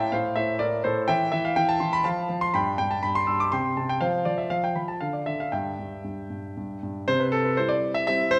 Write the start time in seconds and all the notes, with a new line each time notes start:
Already playing: A2 F5 G5 A5
0.00 E5
0.12 A2 C5 F5
0.36 A2 C5 E5
0.59 A2 A#4 D5
0.84 A2 A4 C5
1.08 E3 E5 G5
1.32 E3 E5
1.45 F5
1.56 E3 G5
1.69 A5
1.80 E3 C6
1.93 B5
2.04 F3 F5 A5
2.29 F3
2.41 C6
2.54 G2 G5 B5
2.78 G2 G5
2.91 A5
3.03 G2 B5
3.15 C6
3.27 G2 E6
3.40 D6
3.52 C3 G5 C6
3.77 C3 A5
3.89 G5
4.01 F3 C5 F5
4.25 F3 D5
4.38 E5
4.50 F3 F5
4.64 G5
4.76 F3 B5
4.88 A5
5.01 D3 F5
5.13 D5
5.26 D3 E5
5.40 F5
5.52 G2 E5 G5
5.79 G2
6.04 G2
6.30 G2
6.57 G2
6.83 G2
7.08 C3 C5
7.20 B4
7.32 A4
7.45 B4
7.57 G3 C4 E4 C5
7.69 D5
7.94 E5
8.07 G3 C4 E4 E5
8.31 C5